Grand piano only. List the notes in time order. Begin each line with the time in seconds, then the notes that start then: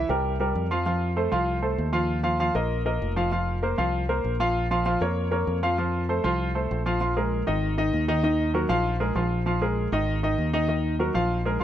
0.09 G3 G4 A#4
0.40 G3 G4 A#4
0.71 F3 F4 F5
0.86 F3 F4 F5
1.16 A3 A4 C5
1.31 F3 F4 F5
1.62 A3 A4 C5
1.93 F3 F4 F5
2.23 F3 F4 F5
2.40 F3 F4 F5
2.55 A#3 A#4 D#5
2.85 A#3 A#4 D#5
3.16 F3 F4 F5
3.32 F3 F4 F5
3.63 A#3 A#4 C5
3.78 F3 F4 F5
4.09 A#3 A#4 C5
4.40 F3 F4 F5
4.71 F3 F4 F5
4.86 F3 F4 F5
5.01 A#3 A#4 C#5
5.31 A#3 A#4 C#5
5.63 F3 F4 F5
5.78 F3 F4 F5
6.09 A3 A4 C5
6.24 F3 F4 F5
6.55 A3 A4 C5
6.86 F3 F4 F5
7.01 F3 F4 F5
7.16 G#3 G#4 A#4
7.47 D#3 D#4 D#5
7.78 D#3 D#4 D#5
8.08 D#3 D#4 D#5
8.23 D#3 D#4 D#5
8.54 F#3 F#4 A#4
8.69 F3 F4 F5
9.00 G#3 G#4 A#4
9.16 F3 F4 F5
9.46 F3 F4 F5
9.61 G#3 G#4 A#4
9.92 D#3 D#4 D#5
10.23 D#3 D#4 D#5
10.53 D#3 D#4 D#5
10.68 D#3 D#4 D#5
10.99 F#3 F#4 A#4
11.14 F3 F4 F5
11.45 G#3 G#4 A#4
11.60 F3 F4 F5